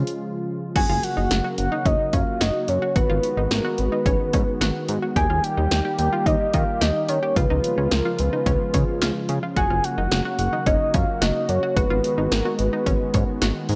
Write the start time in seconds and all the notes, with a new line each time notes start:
Already playing: C#3 F3 G#3 F4 C#5
0.07 closed hi-hat
0.76 F#1 C#3 F#3 A#3 F#4 G#5, kick, closed hi-hat, crash
0.89 F#1 F4
1.03 F#5, closed hi-hat
1.17 F#1 D#4
1.31 F#1, snare, closed hi-hat
1.44 F#4
1.58 F#1 F#5, closed hi-hat
1.72 D#4
1.85 F#1 C#4 D#5, kick, closed hi-hat
2.13 F#2 C#4 F5, kick, closed hi-hat
2.41 F#1 F#4 D#5, snare, closed hi-hat
2.68 F#2 C#5, closed hi-hat
2.82 F#4
2.96 G#1 D#3 G#3 B3 F#4 B4, kick, closed hi-hat
3.10 G#1 F4
3.23 closed hi-hat
3.37 G#1 D#4
3.51 G#1 A#4, snare, closed hi-hat
3.65 F#4
3.78 G#1 B4, closed hi-hat
3.92 D#4
4.06 G#1 C#4, kick, closed hi-hat
4.33 G#2 C#4, kick, closed hi-hat
4.61 G#1 F#4, snare, closed hi-hat
4.89 G#2, closed hi-hat
5.02 F#4
5.16 D#2 G3 A#3 G4 G#5, kick, closed hi-hat
5.30 D#2 F4
5.44 G5, closed hi-hat
5.57 D#2 D#4
5.71 D#2, snare, closed hi-hat
5.85 G4
5.99 D#2 G5, closed hi-hat
6.13 F4
6.26 D#2 D#4 D#5, kick, closed hi-hat
6.54 D#3 D#4 F5, kick, closed hi-hat
6.81 D#2 G4 D#5, snare, closed hi-hat
7.09 D#3 C#5, closed hi-hat
7.23 G4
7.36 C#2 C#3 F3 G#3 F4 B4, kick, closed hi-hat
7.50 C#2 D#4
7.64 closed hi-hat
7.78 C#2 C#4
7.91 C#2 A#4, snare, closed hi-hat
8.05 F4
8.19 C#2 B4, closed hi-hat
8.33 D#4
8.46 C#2 C#4, kick, closed hi-hat
8.74 C#3 C#4, kick, closed hi-hat
9.01 C#2 F4, snare, closed hi-hat
9.29 C#3, closed hi-hat
9.43 F4
9.57 F#1 F#3 A#3 F#4 G#5, kick, closed hi-hat
9.70 F#1 F4
9.84 F#5, closed hi-hat
9.98 F#1 D#4
10.11 F#1, snare, closed hi-hat
10.25 F#4
10.39 F#1 F#5, closed hi-hat
10.53 D#4
10.66 F#1 C#4 D#5, kick, closed hi-hat
10.94 F#2 C#4 F5, kick, closed hi-hat
11.15 F5
11.21 F#1 F#4 D#5, snare, closed hi-hat
11.49 F#2 C#5, closed hi-hat
11.63 F#4
11.76 G#1 D#3 G#3 B3 F#4 B4, kick, closed hi-hat
11.90 G#1 F4
12.04 closed hi-hat
12.18 G#1 D#4
12.31 G#1 A#4, snare, closed hi-hat
12.45 F#4
12.59 G#1 B4, closed hi-hat
12.73 D#4
12.86 G#1 C#4, kick, closed hi-hat
13.14 G#2 C#4, kick, closed hi-hat
13.42 G#1 F#4, snare, closed hi-hat
13.69 G#2, open hi-hat